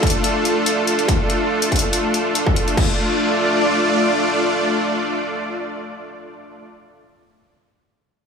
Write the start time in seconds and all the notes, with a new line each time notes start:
Already playing: A3 D4 F4 A4
0.03 kick, closed hi-hat
0.07 closed hi-hat
0.10 closed hi-hat
0.24 closed hi-hat
0.45 closed hi-hat
0.66 closed hi-hat
0.87 closed hi-hat
0.99 closed hi-hat
1.08 kick, closed hi-hat
1.30 closed hi-hat
1.62 closed hi-hat
1.72 kick, closed hi-hat
1.76 closed hi-hat
1.79 closed hi-hat
1.93 closed hi-hat
2.14 closed hi-hat
2.35 closed hi-hat
2.46 kick
2.56 closed hi-hat
2.68 closed hi-hat
2.77 A3 D4 F4 D5, kick, crash